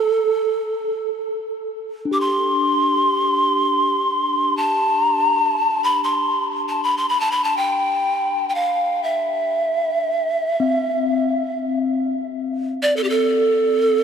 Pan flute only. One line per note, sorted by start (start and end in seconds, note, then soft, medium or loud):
0.00 1.33 A4 medium
2.13 2.22 D6 medium
2.21 4.59 C6 medium
4.57 5.02 A5 medium
5.02 5.15 A#5 medium
5.15 5.28 A5 medium
5.28 5.40 A#5 medium
5.40 5.85 A5 medium
5.84 6.05 B5 medium
6.04 6.44 C6 medium
6.69 6.85 A5 medium
6.84 6.99 B5 medium
6.98 7.09 C6 medium
7.09 7.22 B5 medium
7.20 7.33 A5 medium
7.32 7.46 B5 medium
7.44 7.59 A5 medium
7.57 8.48 G5 medium
8.49 8.56 G5 soft
8.55 9.05 F5 medium
9.04 11.78 E5 medium
12.83 12.96 D5 medium
12.97 13.05 A4 medium
13.04 13.11 G4 medium
13.09 14.04 A4 medium